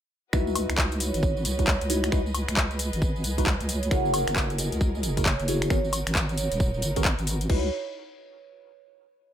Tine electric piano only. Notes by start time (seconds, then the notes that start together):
0.33 D#4 E4 F#4 B4
1.59 D#4 E4 F#4 B4
1.90 D#4 E4 F#4 C#5
2.12 D#4 E4 F#4 B4
3.38 D#4 E4 F#4 B4
3.91 E4 F#4 G#4 A#4
5.17 E4 F#4 G#4 A#4
5.48 E4 F#4 G#4 C#5
5.71 B3 F#4 G#4 A#4
6.97 B3 F#4 G#4 A#4
7.50 D#4 E4 F#4 B4